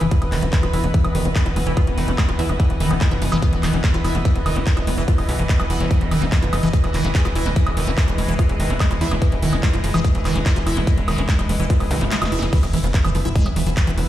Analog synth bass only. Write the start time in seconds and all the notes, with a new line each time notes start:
0.01 F1
0.22 E1
0.32 E1
0.42 E1
0.63 E1
0.73 E1
0.84 E1
1.04 E1
1.15 E1
1.25 E1
1.46 E1
1.56 E1
1.67 E1
1.87 E1
1.98 E1
2.08 E1
2.29 E1
2.39 E2
2.49 E1
2.70 E1
2.80 E1
2.91 E1
3.11 F1
3.22 F1
3.32 F1
3.53 E1
3.63 E1
3.73 E1
3.94 E1
4.05 E1
4.15 E1
4.36 E1
4.46 E1
4.56 E1
4.77 E1
4.87 E1
4.98 E1
5.18 E1
5.29 B1
5.39 F1
5.60 E1
5.70 E1
5.80 E1
6.01 E1
6.11 E1
6.22 E1
6.42 F1
6.53 F1
6.63 F1
6.84 E1
6.94 E1
7.04 E1
7.25 E1
7.36 E1
7.46 E1
7.67 E1
7.77 E1
7.87 E1
8.08 E1
8.18 E1
8.29 E1
8.49 E1
8.60 E1
8.70 E1
8.91 E1
9.01 E2
9.11 E1
9.32 E1
9.42 E1
9.53 E1
9.73 F1
9.84 F1
9.94 F1
10.15 E1
10.25 E1
10.35 E1
10.56 E1
10.67 E1
10.77 E1
10.98 E1
11.08 E1
11.18 E1
11.39 E1
11.49 E1
11.60 E1
11.80 E1
11.91 B1
12.01 F1
12.22 E1
12.32 E1
12.42 E1
12.63 E1
12.73 E1
12.84 E1
13.05 F1
13.15 F1
13.25 F1
13.46 E1
13.56 E1
13.67 E1
13.87 E1
13.98 E1